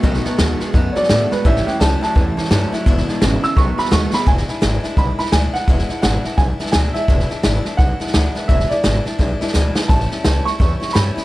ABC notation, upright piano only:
X:1
M:4/4
L:1/8
Q:"Swing" 1/4=170
K:Emix
V:1 name="Upright piano"
[^df] z4 [c=d] d B | e =g a a4- a | z3 e' c' b c' b | g4 b b g f- |
f2 f2 g2 g e- | e4 f4 | e d6 z | a3 c'3 b2 |]